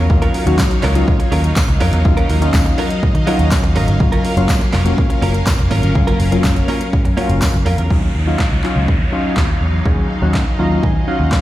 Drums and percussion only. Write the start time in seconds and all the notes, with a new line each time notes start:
0.10 kick
0.22 closed hi-hat
0.34 open hi-hat
0.47 closed hi-hat
0.59 kick, snare, clap, tambourine
0.71 closed hi-hat
0.83 clap, open hi-hat
0.95 closed hi-hat
1.08 kick
1.20 closed hi-hat
1.32 open hi-hat
1.44 closed hi-hat
1.56 kick, snare, clap, tambourine
1.69 closed hi-hat
1.81 open hi-hat
1.93 closed hi-hat
2.05 kick
2.17 closed hi-hat
2.30 open hi-hat
2.42 closed hi-hat
2.54 kick, snare, clap, tambourine
2.66 closed hi-hat
2.78 open hi-hat
2.90 closed hi-hat
3.03 kick
3.15 closed hi-hat
3.27 open hi-hat
3.39 closed hi-hat
3.51 kick, snare, clap, tambourine
3.64 closed hi-hat
3.76 open hi-hat
3.88 closed hi-hat
4.00 kick
4.12 closed hi-hat
4.25 open hi-hat
4.37 closed hi-hat
4.49 kick, snare, clap, tambourine
4.61 closed hi-hat
4.73 clap, open hi-hat
4.86 closed hi-hat
4.98 kick
5.10 closed hi-hat
5.22 open hi-hat
5.34 closed hi-hat
5.47 kick, snare, clap, tambourine
5.59 closed hi-hat
5.71 open hi-hat
5.83 closed hi-hat
5.95 kick
6.08 closed hi-hat
6.20 open hi-hat
6.32 closed hi-hat
6.44 kick, snare, clap, tambourine
6.56 closed hi-hat
6.68 open hi-hat
6.81 closed hi-hat
6.93 kick
7.05 closed hi-hat
7.17 open hi-hat
7.29 closed hi-hat
7.42 kick, snare, clap, tambourine
7.54 closed hi-hat
7.66 open hi-hat
7.78 closed hi-hat
7.90 kick
8.39 kick, snare, clap
8.64 clap
8.88 kick
9.37 kick, snare, clap
9.86 kick
10.34 kick, snare, clap
10.83 kick
11.32 kick, snare, clap